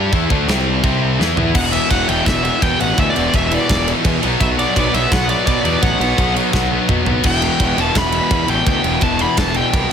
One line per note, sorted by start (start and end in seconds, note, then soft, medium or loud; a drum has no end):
0.00 0.11 G2 loud
0.00 0.12 G3 medium
0.00 0.13 D4 loud
0.00 0.13 G4 loud
0.12 0.29 E2 medium
0.12 0.30 E3 loud
0.12 0.30 B3 loud
0.12 0.30 E4 loud
0.12 kick loud
0.12 crash medium
0.30 0.47 D2 loud
0.30 0.48 D3 medium
0.30 0.48 A3 medium
0.30 0.48 D4 loud
0.30 kick loud
0.48 0.81 C2 loud
0.48 0.82 C3 medium
0.48 0.82 G3 loud
0.48 0.83 C4 loud
0.48 snare loud
0.48 crash medium
0.83 1.17 C2 loud
0.83 1.19 C3 medium
0.83 1.19 G3 loud
0.83 1.19 C4 loud
0.83 kick loud
0.83 crash medium
1.19 1.36 E2 loud
1.19 1.36 E3 medium
1.19 1.36 B3 loud
1.19 1.37 E4 loud
1.19 snare medium
1.36 1.54 E2 medium
1.36 1.54 E3 medium
1.36 1.54 B3 medium
1.36 1.55 E4 medium
1.36 floor tom medium
1.54 1.78 E1 medium
1.54 1.71 E2 loud
1.54 1.71 B2 medium
1.54 1.72 E3 loud
1.54 1.60 F#5 loud
1.54 kick loud
1.54 crash loud
1.71 1.90 E2 medium
1.71 1.90 B2 medium
1.71 1.91 E3 medium
1.71 1.90 E5 medium
1.71 ride medium
1.90 2.02 E1 medium
1.90 2.07 E2 medium
1.90 2.08 B2 loud
1.90 2.09 E3 loud
1.90 2.08 F#5 loud
1.90 kick medium
1.90 ride loud
2.08 2.20 E1 medium
2.08 2.25 E2 medium
2.08 2.25 B2 medium
2.08 2.26 E3 loud
2.08 2.26 G5 loud
2.08 ride medium
2.26 2.49 E1 loud
2.26 2.42 E2 medium
2.26 2.43 B2 loud
2.26 2.44 E3 loud
2.26 2.43 E5 loud
2.26 kick loud
2.26 snare loud
2.26 ride loud
2.43 2.60 E2 medium
2.43 2.61 B2 loud
2.43 2.62 E3 medium
2.43 2.62 E5 loud
2.43 ride medium
2.61 2.79 E2 loud
2.61 2.73 E2 loud
2.61 2.80 B2 loud
2.61 2.80 E3 loud
2.61 2.80 G5 loud
2.61 kick loud
2.61 ride loud
2.80 2.92 A1 medium
2.80 2.97 E2 medium
2.80 2.98 B2 medium
2.80 2.98 E3 medium
2.80 2.99 F#5 medium
2.80 ride medium
2.98 3.09 D2 medium
2.98 3.14 E2 medium
2.98 3.14 B2 loud
2.98 3.15 E3 loud
2.98 3.08 E5 medium
2.98 kick loud
2.98 ride loud
3.10 3.36 D5 loud
3.15 3.27 E1 loud
3.15 3.32 E2 medium
3.15 3.32 B2 medium
3.15 3.33 E3 medium
3.15 ride medium
3.33 3.56 E1 medium
3.33 3.50 E2 loud
3.33 3.51 B2 loud
3.33 3.51 E3 loud
3.33 3.44 E5 medium
3.33 kick medium
3.33 ride loud
3.46 3.54 E5 medium
3.51 3.68 E2 medium
3.51 3.69 B2 loud
3.51 3.69 E3 medium
3.51 3.88 D5 medium
3.51 ride medium
3.69 3.92 E1 loud
3.69 3.86 E2 loud
3.69 3.87 B2 loud
3.69 3.87 E3 loud
3.69 kick loud
3.69 snare loud
3.69 ride loud
3.87 4.04 E2 medium
3.87 4.04 B2 loud
3.87 4.05 E3 loud
3.87 ride medium
4.05 4.16 E2 loud
4.05 4.22 E2 loud
4.05 4.21 B2 loud
4.05 4.22 E3 loud
4.05 kick loud
4.05 ride loud
4.22 4.34 B1 medium
4.22 4.39 B2 medium
4.22 4.40 F#3 loud
4.22 4.40 B3 loud
4.22 ride medium
4.40 4.63 B1 medium
4.40 4.57 B2 loud
4.40 4.58 F#3 loud
4.40 4.58 B3 loud
4.40 4.46 E5 loud
4.40 kick loud
4.40 ride loud
4.57 4.75 B2 loud
4.57 4.76 F#3 medium
4.57 4.76 B3 medium
4.57 4.95 D5 medium
4.57 ride medium
4.76 4.88 B1 loud
4.76 4.93 B2 loud
4.76 4.93 F#3 loud
4.76 4.94 B3 loud
4.76 kick medium
4.76 ride loud
4.93 5.05 B1 medium
4.93 5.10 B2 medium
4.93 5.11 F#3 medium
4.93 5.12 B3 loud
4.93 5.12 E5 loud
4.93 ride medium
5.11 5.34 B1 loud
5.11 5.28 B2 loud
5.11 5.28 F#3 loud
5.11 5.30 B3 loud
5.11 5.30 F#5 loud
5.11 kick loud
5.11 snare loud
5.11 ride loud
5.29 5.46 B2 medium
5.29 5.47 F#3 loud
5.29 5.48 B3 loud
5.29 5.45 D5 medium
5.29 ride medium
5.46 5.58 B2 loud
5.46 5.63 B2 loud
5.46 5.63 F#3 loud
5.46 5.65 B3 loud
5.46 5.80 D5 medium
5.46 kick loud
5.46 ride loud
5.64 5.76 E2 medium
5.64 5.80 B2 medium
5.64 5.81 F#3 medium
5.64 5.82 B3 medium
5.64 ride medium
5.82 5.94 A1 medium
5.82 5.98 B2 medium
5.82 5.99 F#3 loud
5.82 6.00 B3 loud
5.82 6.32 F#5 loud
5.82 kick loud
5.82 ride loud
5.99 6.12 B1 medium
5.99 6.16 B2 medium
5.99 6.17 F#3 medium
5.99 6.18 B3 medium
5.99 ride medium
6.17 6.41 B1 loud
6.17 6.34 B2 medium
6.17 6.34 F#3 loud
6.17 6.36 B3 loud
6.17 kick medium
6.17 ride loud
6.35 6.51 B2 medium
6.35 6.52 F#3 medium
6.35 6.53 B3 medium
6.35 ride medium
6.53 6.76 B1 loud
6.53 6.70 B2 loud
6.53 6.71 F#3 loud
6.53 6.72 B3 loud
6.53 kick loud
6.53 snare medium
6.72 6.88 B2 medium
6.72 6.88 F#3 medium
6.72 6.89 B3 loud
6.89 7.04 B2 loud
6.89 7.01 B2 loud
6.89 7.05 F#3 loud
6.89 7.06 B3 loud
6.89 kick loud
6.89 mid tom loud
7.05 7.17 B1 medium
7.05 7.22 B2 medium
7.05 7.24 F#3 loud
7.05 9.92 B3 loud
7.05 floor tom loud
7.23 7.47 E1 medium
7.23 7.41 E2 medium
7.23 7.41 B2 loud
7.23 7.42 E3 medium
7.23 7.81 G5 loud
7.23 kick loud
7.23 crash loud
7.23 splash medium
7.41 7.59 E2 medium
7.41 7.59 B2 medium
7.41 7.60 E3 medium
7.41 ride medium
7.59 7.71 E1 medium
7.59 7.75 E2 loud
7.59 7.76 B2 loud
7.59 7.77 E3 loud
7.59 kick medium
7.59 ride loud
7.77 7.89 E1 loud
7.77 7.93 E2 medium
7.77 7.94 B2 medium
7.77 7.95 E3 medium
7.77 7.97 A5 loud
7.77 ride medium
7.95 8.19 E1 loud
7.95 8.12 E2 loud
7.95 8.13 B2 loud
7.95 8.13 E3 loud
7.95 8.50 B5 loud
7.95 kick loud
7.95 snare loud
7.95 ride loud
8.12 8.29 E2 medium
8.12 8.30 B2 medium
8.12 8.30 E3 loud
8.12 ride medium
8.30 8.48 E2 medium
8.30 8.43 E2 loud
8.30 8.48 B2 loud
8.30 8.49 E3 loud
8.30 kick loud
8.30 ride loud
8.48 8.60 A1 medium
8.48 8.66 E2 medium
8.48 8.66 B2 medium
8.48 8.67 E3 loud
8.48 8.67 G5 loud
8.48 ride medium
8.66 8.78 D2 medium
8.66 8.83 E2 loud
8.66 8.84 B2 loud
8.66 8.85 E3 loud
8.66 9.05 G5 loud
8.66 kick loud
8.66 ride loud
8.84 8.96 E1 medium
8.84 9.01 E2 medium
8.84 9.01 B2 medium
8.84 9.02 E3 medium
8.84 ride medium
9.01 9.25 E1 loud
9.01 9.19 E2 medium
9.01 9.20 B2 loud
9.01 9.20 E3 loud
9.01 9.21 A5 loud
9.01 kick medium
9.01 ride medium
9.19 9.37 E2 loud
9.19 9.37 B2 loud
9.19 9.38 E3 loud
9.19 9.38 B5 loud
9.19 ride medium
9.37 9.61 E1 loud
9.37 9.55 E2 loud
9.37 9.55 B2 loud
9.37 9.55 E3 loud
9.37 9.55 A5 loud
9.37 kick loud
9.37 snare loud
9.37 ride loud
9.54 9.72 E2 medium
9.54 9.72 B2 loud
9.54 9.73 E3 medium
9.54 9.90 G5 loud
9.54 ride medium
9.73 9.85 C2 loud
9.73 9.91 E2 loud
9.73 9.90 B2 loud
9.73 9.91 E3 loud
9.73 kick loud
9.73 ride loud